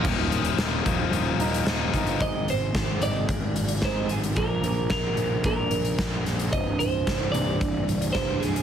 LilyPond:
<<
  \new Staff \with { instrumentName = "Clean electric guitar" } { \time 4/4 \key aes \lydian \tempo 4 = 111 r1 | ees''8 c''4 d''4. c''8 aes'8 | bes'4 bes'4 bes'4. r8 | ees''8 c''4 d''4. c''8 aes'8 | }
  \new Staff \with { instrumentName = "Distorted electric guitar" } { \clef bass \time 4/4 \key aes \lydian <ees, bes, ees f bes ees'>4. <ees, bes, ees f bes ees'>4. <ees, bes, ees f bes ees'>4 | r1 | r1 | r1 | }
  \new Staff \with { instrumentName = "Steel-string acoustic guitar" } { \clef bass \time 4/4 \key aes \lydian ees,4 ees8 f8 bes8 ees'8 f8 ees'8 | <aes, ees aes>8 aes,8 <aes, ees>8 <aes, ees aes>8 <aes, ees>8 <aes, ees>8 <aes, ees aes>8 <aes, ees>8 | <bes, f bes>8 <bes, f bes>8 <bes, f>8 <bes, f>8 <bes, f bes>8 <bes, f>8 <bes, f>8 <bes, f>8 | <c, g, c>8 <c, g,>8 <c, g,>8 <c, g, c>8 <c, g,>8 <c, g,>8 <c, g, c>8 <c, g,>8 | }
  \new Staff \with { instrumentName = "Picked electric bass" } { \clef bass \time 4/4 \key aes \lydian ees,,4 ees,,8 ees,,8 ees,,8 ees,,8 ees,,8 g,,8 | aes,,4 aes,,8 aes,,8 aes,,8 aes,,8 aes,,8 aes,,8 | bes,,8 bes,,8 bes,,8 bes,,8 bes,,8 bes,,8 bes,,8 bes,,8 | c,,4 c,,8 c,,8 c,,8 c,,8 c,,8 c,,8 | }
  \new DrumStaff \with { instrumentName = "Drums" } \drummode { \time 4/4 <cymc bd>8 hh16 hh16 <hh sn>8 <hh bd>8 hh8 hh16 hh16 <hh sn>8 <hh bd>16 hh16 | <hh bd>8 hh8 <hh bd sn>8 hh8 <hh bd>8 hh16 hh16 <hh bd sn>8 hh16 hh16 | <hh bd>8 hh8 <hh bd sn>8 hh8 <hh bd>8 hh16 hh16 <hh bd sn>8 <hh sn>16 hh16 | <hh bd>8 hh8 <hh bd sn>8 hh8 <hh bd>8 hh16 hh16 <hh bd sn>8 <hh sn>16 hh16 | }
>>